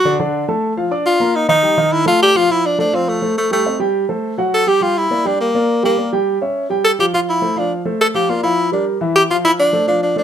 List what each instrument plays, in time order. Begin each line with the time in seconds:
Already playing: tenor saxophone F#4
0.05 grand piano D3 D4 D5
0.19 grand piano D3 D4 D5
0.48 grand piano A3 A4 A5
0.77 grand piano F3 F4 F5
0.91 grand piano D4 D5 D6
1.06 tenor saxophone F4
1.20 grand piano A#3 A#4 A#5
1.36 tenor saxophone D#4
1.48 grand piano D#3 D#4 D#5, tenor saxophone D#4
1.63 grand piano G3 G4 G5
1.77 grand piano D#3 D#4 D#5
1.92 tenor saxophone E4
2.06 grand piano A3 A4 A5, tenor saxophone F4
2.22 tenor saxophone G4
2.35 grand piano F3 F4 F5, tenor saxophone F4
2.50 grand piano F3 F4 F5, tenor saxophone E4
2.66 tenor saxophone D4
2.78 grand piano A3 A4 C5, tenor saxophone D4
2.93 grand piano F3 F4 F5, tenor saxophone C4
3.08 tenor saxophone A3
3.22 grand piano A3 A4 C5
3.38 tenor saxophone A3
3.51 grand piano G3 G4 G5, tenor saxophone A3
3.66 grand piano C4 C5 D#5
3.80 grand piano G3 G4 G5
4.09 grand piano A3 A4 C5
4.38 grand piano F#3 F#4 F#5
4.54 tenor saxophone A4
4.66 grand piano G3 G4 G5, tenor saxophone G4
4.81 grand piano G3 G4 G5, tenor saxophone F4
4.98 tenor saxophone E4
5.10 grand piano A#3 A#4 D5
5.25 grand piano G3 G4 G5, tenor saxophone D4
5.41 tenor saxophone A#3
5.54 grand piano A#3 A#4 D5
5.83 grand piano G3 G4 G5, tenor saxophone A#3
5.98 grand piano A#3 A#4 D5
6.13 grand piano G3 G4 G5
6.41 grand piano C#4 C#5 E5
6.70 grand piano G3 G4 G5
6.85 tenor saxophone A4
6.99 grand piano F3 F4 F5, tenor saxophone G4
7.13 grand piano F3 F4 F5, tenor saxophone F4
7.29 tenor saxophone E4
7.42 grand piano A3 A4 C5
7.56 grand piano F3 F4 F5, tenor saxophone D4
7.85 grand piano A3 A4 C5
8.01 tenor saxophone A4
8.14 grand piano F3 F4 F5, tenor saxophone G4
8.29 grand piano A#3 A#4 D5, tenor saxophone F4
8.43 grand piano F3 F4 F5, tenor saxophone E4
8.72 grand piano G3 G4 A#4, tenor saxophone D4
9.01 grand piano E3 E4 E5
9.16 tenor saxophone G4
9.30 grand piano F3 F4 F5, tenor saxophone F4
9.44 grand piano F3 F4 F5, tenor saxophone E4
9.59 tenor saxophone D4
9.73 grand piano A3 A4 C5
9.87 grand piano F3 F4 F5, tenor saxophone D4
10.03 tenor saxophone D4
10.16 grand piano A3 A4 C5, tenor saxophone D4